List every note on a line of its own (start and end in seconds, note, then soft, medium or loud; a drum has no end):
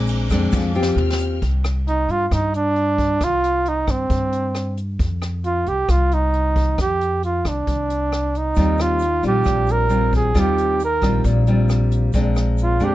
0.00 0.26 A#1 loud
0.00 0.51 A#2 medium
0.00 0.27 G#3 medium
0.00 0.27 C4 medium
0.00 0.28 D4 medium
0.00 1.38 C5 medium
0.00 0.94 G#5 medium
0.00 0.94 D6 loud
0.07 ride medium
0.07 shaker medium
0.30 0.51 F2 loud
0.30 0.72 G#3 medium
0.30 0.72 C4 medium
0.30 0.72 D4 medium
0.30 kick medium
0.30 cross-stick medium
0.30 ride soft
0.30 shaker medium
0.52 0.94 F2 medium
0.52 0.95 F3 medium
0.52 kick medium
0.52 high tom soft
0.52 shaker medium
0.74 1.38 C4 medium
0.74 1.39 F4 medium
0.74 1.39 G4 medium
0.74 shaker soft
0.83 snare medium
0.96 1.38 D#2 medium
0.96 1.41 G5 medium
0.96 1.41 F6 medium
0.96 mid tom medium
1.13 snare medium
1.18 shaker medium
1.42 2.05 C2 medium
1.42 kick medium
1.42 closed hi-hat medium
1.64 cross-stick medium
1.64 closed hi-hat soft
1.87 2.12 D#4 loud
1.87 closed hi-hat soft
2.09 2.29 G2 medium
2.09 2.28 F4 loud
2.09 closed hi-hat soft
2.28 3.17 G2 medium
2.28 2.35 F4 medium
2.28 kick medium
2.28 cross-stick medium
2.28 closed hi-hat soft
2.33 2.54 D#4 medium
2.54 3.25 D4 loud
2.54 closed hi-hat soft
2.76 closed hi-hat soft
2.98 kick medium
2.98 closed hi-hat soft
3.21 3.84 C2 medium
3.21 3.70 F4 loud
3.21 kick medium
3.21 cross-stick medium
3.21 closed hi-hat medium
3.43 closed hi-hat soft
3.65 3.92 D#4 medium
3.65 closed hi-hat soft
3.87 4.08 G2 medium
3.87 4.78 C4 medium
3.87 kick medium
3.87 cross-stick medium
3.87 closed hi-hat soft
4.10 4.95 G2 medium
4.10 kick medium
4.10 closed hi-hat medium
4.32 closed hi-hat soft
4.55 cross-stick medium
4.55 closed hi-hat soft
4.77 closed hi-hat soft
4.99 5.62 F2 medium
4.99 kick medium
4.99 closed hi-hat medium
5.22 cross-stick medium
5.22 closed hi-hat soft
5.44 5.70 F4 medium
5.44 closed hi-hat soft
5.66 5.87 C2 medium
5.66 5.92 G4 medium
5.66 closed hi-hat soft
5.88 6.74 C2 medium
5.88 6.15 F4 medium
5.88 kick medium
5.88 cross-stick medium
5.88 closed hi-hat medium
6.11 6.79 D#4 loud
6.11 closed hi-hat soft
6.34 closed hi-hat soft
6.56 kick medium
6.56 closed hi-hat soft
6.78 7.41 F2 medium
6.78 7.21 G4 medium
6.78 kick medium
6.78 cross-stick medium
6.78 closed hi-hat medium
7.01 closed hi-hat soft
7.23 7.49 F4 medium
7.23 closed hi-hat soft
7.45 7.66 C2 medium
7.45 8.39 D4 medium
7.45 kick soft
7.45 cross-stick medium
7.45 closed hi-hat soft
7.67 8.52 C2 medium
7.67 kick medium
7.67 closed hi-hat medium
7.90 closed hi-hat soft
8.12 cross-stick medium
8.12 closed hi-hat soft
8.35 8.83 D#4 medium
8.35 closed hi-hat soft
8.55 9.19 D#2 medium
8.55 9.43 D#3 medium
8.55 9.01 G3 medium
8.55 9.01 C4 medium
8.55 9.01 F4 medium
8.55 kick medium
8.55 closed hi-hat medium
8.55 shaker medium
8.78 9.25 F4 loud
8.78 cross-stick medium
8.78 closed hi-hat soft
8.78 shaker soft
8.99 closed hi-hat soft
8.99 shaker medium
9.23 9.44 A#1 medium
9.23 9.87 G3 medium
9.23 9.87 C4 medium
9.23 9.87 F4 medium
9.23 closed hi-hat soft
9.23 shaker soft
9.27 9.73 G4 medium
9.44 10.31 A#1 medium
9.44 10.32 A#2 medium
9.44 kick medium
9.44 cross-stick medium
9.44 closed hi-hat medium
9.44 shaker medium
9.67 closed hi-hat soft
9.67 shaker soft
9.71 10.14 A#4 loud
9.89 10.31 G3 medium
9.89 10.31 C4 medium
9.89 10.31 F4 medium
9.89 closed hi-hat soft
9.89 shaker medium
10.12 10.41 G#4 medium
10.12 kick medium
10.12 closed hi-hat soft
10.12 shaker soft
10.34 10.98 D#2 medium
10.34 11.22 D#3 medium
10.34 10.79 G3 medium
10.34 10.79 C4 medium
10.34 10.79 F4 medium
10.34 kick medium
10.34 cross-stick medium
10.34 closed hi-hat medium
10.34 shaker medium
10.39 10.82 G4 loud
10.58 closed hi-hat soft
10.58 shaker soft
10.80 closed hi-hat soft
10.80 shaker medium
10.84 11.23 A#4 loud
11.02 11.23 A#1 medium
11.02 11.43 G3 medium
11.02 11.43 C4 medium
11.02 11.43 F4 medium
11.02 kick medium
11.02 cross-stick medium
11.02 closed hi-hat soft
11.02 shaker soft
11.24 12.09 A#1 loud
11.24 12.11 A#2 medium
11.24 kick medium
11.24 closed hi-hat medium
11.24 shaker medium
11.47 12.10 G3 medium
11.47 12.10 C4 medium
11.47 12.11 F4 medium
11.47 closed hi-hat soft
11.47 shaker soft
11.69 cross-stick medium
11.69 closed hi-hat soft
11.69 shaker medium
11.91 closed hi-hat soft
11.91 shaker soft
12.13 12.77 A#1 medium
12.13 12.95 A#2 medium
12.13 12.77 G#3 medium
12.13 12.77 C4 medium
12.13 12.77 D4 medium
12.13 kick medium
12.13 closed hi-hat medium
12.13 shaker medium
12.35 cross-stick medium
12.35 closed hi-hat medium
12.35 shaker soft
12.58 closed hi-hat soft
12.58 shaker medium
12.63 12.85 F4 medium
12.79 12.95 F2 medium
12.79 12.95 G#3 medium
12.79 12.95 C4 medium
12.79 12.95 D4 medium
12.79 closed hi-hat soft
12.79 shaker soft
12.84 12.95 G4 loud